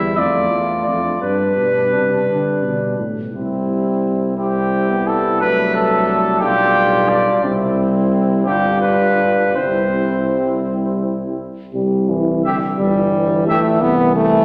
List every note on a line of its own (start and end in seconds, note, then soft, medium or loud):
0.00 0.18 E2 medium
0.00 0.19 G3 soft
0.00 0.17 E4 medium
0.00 0.20 E4 medium
0.00 0.20 E5 medium
0.17 0.51 F2 medium
0.17 1.22 A3 soft
0.17 1.05 D4 medium
0.17 1.23 F4 soft
0.17 0.85 D5 medium
0.51 0.86 E2 soft
0.86 1.21 F2 soft
0.86 1.21 D5 medium
1.22 1.56 G2 soft
1.22 2.99 G3 soft
1.22 2.98 D4 soft
1.22 2.99 D4 soft
1.22 2.96 B4 medium
1.57 1.94 B2 soft
1.93 2.27 C3 soft
2.28 2.65 D3 soft
2.63 2.98 B2 soft
2.98 3.33 A2 soft
3.34 6.43 C2 medium
3.34 4.34 G3 soft
3.34 4.34 C4 soft
3.34 4.34 E4 soft
4.38 5.43 G3 soft
4.38 4.91 C4 medium
4.38 5.43 E4 soft
4.38 5.09 G4 medium
4.90 5.43 B3 soft
5.07 5.40 A4 medium
5.41 6.41 F#3 medium
5.41 6.43 A3 medium
5.41 5.91 D4 medium
5.41 5.74 B4 medium
5.75 6.40 A4 medium
5.91 6.43 D4 medium
6.41 7.26 B1 medium
6.41 7.42 G3 medium
6.41 7.45 D4 medium
6.41 7.43 F4 medium
6.41 7.10 G4 medium
7.09 7.43 D5 medium
7.43 8.45 C2 medium
7.43 8.45 G3 medium
7.43 8.49 C4 medium
7.43 8.48 E4 medium
8.46 9.54 G1 medium
8.46 9.54 G3 medium
8.46 9.58 D4 medium
8.46 9.55 F4 medium
8.46 8.80 G4 medium
8.81 9.57 B4 medium
9.55 11.37 C2 soft
9.55 11.37 G3 soft
9.55 11.41 C4 soft
9.55 11.37 E4 soft
9.55 10.65 C5 medium
11.74 12.62 C2 medium
11.74 12.11 G3 medium
12.09 12.44 E3 medium
12.44 12.79 D3 medium
12.44 12.57 G4 medium
12.44 12.56 E5 medium
12.79 13.65 G1 medium
12.79 13.80 E3 medium
12.79 13.44 G3 medium
13.48 13.83 A3 medium
13.48 13.61 G4 medium
13.48 13.60 E5 medium
13.82 14.45 C2 medium
13.82 14.45 E3 medium
13.82 14.15 B3 medium
14.16 14.45 A3 medium